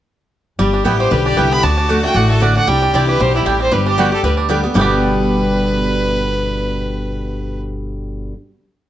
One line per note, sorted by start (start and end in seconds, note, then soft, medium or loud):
0.59 0.80 G1 medium
0.59 0.84 G3 medium
0.59 0.84 G3 loud
0.59 1.67 G4 loud
0.73 1.25 D4 medium
0.84 1.07 A1 medium
0.84 1.10 G3 medium
0.84 0.95 B3 medium
0.84 1.10 B3 medium
0.84 0.95 E4 medium
0.84 1.10 E4 medium
0.84 0.95 B4 medium
0.84 0.95 G5 loud
1.00 1.35 G4 medium
1.00 1.13 C5 medium
1.11 1.34 B1 medium
1.11 1.61 D3 medium
1.11 1.36 G3 medium
1.11 1.26 B4 medium
1.26 1.63 D4 medium
1.26 1.39 D5 medium
1.36 1.60 C2 medium
1.36 1.62 G3 medium
1.36 1.63 G3 medium
1.36 1.47 B3 medium
1.36 1.63 B3 medium
1.36 1.47 E4 medium
1.36 1.63 E4 medium
1.36 1.47 B4 loud
1.36 1.54 G5 medium
1.36 1.47 G5 medium
1.51 1.63 B3 medium
1.51 1.65 B5 loud
1.63 2.05 D2 medium
1.63 1.88 D3 medium
1.63 1.77 D4 medium
1.63 2.69 F#4 loud
1.63 2.04 A5 medium
1.78 1.88 D4 medium
1.89 2.03 D3 medium
1.89 1.99 A3 medium
1.89 2.03 A3 medium
1.89 2.15 D4 medium
1.89 2.03 D4 medium
1.89 1.99 F#4 medium
1.89 2.02 F#4 loud
1.89 1.99 D5 loud
1.89 1.99 F#5 medium
2.03 2.29 A3 medium
2.03 2.15 D4 soft
2.03 2.15 F#4 medium
2.03 2.18 G5 medium
2.14 2.56 A1 medium
2.14 2.64 A2 medium
2.14 2.41 D4 medium
2.14 2.29 F#5 medium
2.30 2.65 A3 medium
2.30 2.44 A4 medium
2.40 2.66 D3 medium
2.40 2.66 A3 medium
2.40 2.51 A3 loud
2.40 2.56 D4 medium
2.40 2.66 D4 medium
2.40 2.51 F#4 medium
2.40 2.66 F#4 medium
2.40 2.52 D5 loud
2.40 2.56 D5 medium
2.40 2.52 F#5 loud
2.56 2.82 D4 medium
2.56 2.69 F#5 medium
2.67 2.88 C2 medium
2.67 3.17 C3 medium
2.67 2.93 G3 medium
2.67 3.71 G4 loud
2.67 2.96 G5 medium
2.82 3.35 D4 medium
2.94 3.16 C2 medium
2.94 3.18 E3 medium
2.94 3.20 G3 medium
2.94 3.19 G3 loud
2.94 3.03 C4 medium
2.94 3.19 D4 medium
2.94 3.04 E4 medium
2.94 3.19 E4 loud
2.94 3.04 D5 medium
2.94 3.08 D5 medium
2.94 3.04 G5 medium
3.09 4.12 G4 medium
3.09 3.22 B4 medium
3.20 3.42 B1 medium
3.20 3.44 B2 medium
3.20 3.46 G3 medium
3.20 3.34 C5 loud
3.35 3.86 D4 medium
3.35 3.49 E4 soft
3.45 3.67 A1 medium
3.45 3.70 A2 medium
3.45 3.71 G3 medium
3.45 3.55 C4 medium
3.45 3.55 E4 medium
3.45 3.61 G4 medium
3.45 3.55 D5 medium
3.45 3.56 G5 loud
3.60 3.71 C4 medium
3.60 3.74 C5 medium
3.71 4.13 G1 medium
3.71 4.21 G2 loud
3.71 3.97 G3 medium
3.71 4.60 G4 loud
3.71 3.86 B4 medium
3.86 4.21 D4 medium
3.86 4.01 G4 medium
3.98 4.11 D3 medium
3.98 4.11 G3 medium
3.98 4.23 G3 medium
3.98 4.07 B3 medium
3.98 4.12 B3 loud
3.98 4.13 F#4 medium
3.98 4.08 G4 medium
3.98 4.11 G4 loud
3.98 4.08 D5 medium
3.98 4.08 G5 loud
4.12 4.24 B3 soft
4.12 4.23 G4 medium
4.12 4.47 G4 medium
4.12 4.23 A4 medium
4.23 4.64 D2 medium
4.23 4.48 D3 medium
4.23 4.48 G3 medium
4.23 4.32 B4 medium
4.37 4.73 D4 medium
4.49 4.63 D3 loud
4.49 4.63 G3 medium
4.49 4.74 G3 medium
4.49 4.59 B3 medium
4.49 4.63 B3 medium
4.49 4.59 G4 medium
4.49 4.63 G4 medium
4.49 4.59 D5 loud
4.49 4.59 G5 medium
4.64 4.75 B3 medium
4.64 4.75 B3 soft
4.64 4.75 G4 medium
4.74 8.29 G1 medium
4.74 8.33 G2 medium
4.74 8.33 B2 medium
4.74 8.33 D3 medium
4.74 8.29 G3 medium
4.74 8.33 G3 medium
4.74 8.33 B3 medium
4.74 8.34 B3 medium
4.74 8.30 B3 medium
4.74 8.33 G4 medium
4.74 8.34 G4 medium
4.74 7.59 B4 medium
4.74 8.34 D5 loud
4.74 8.34 G5 loud
4.80 8.31 D4 medium
4.80 8.32 G4 medium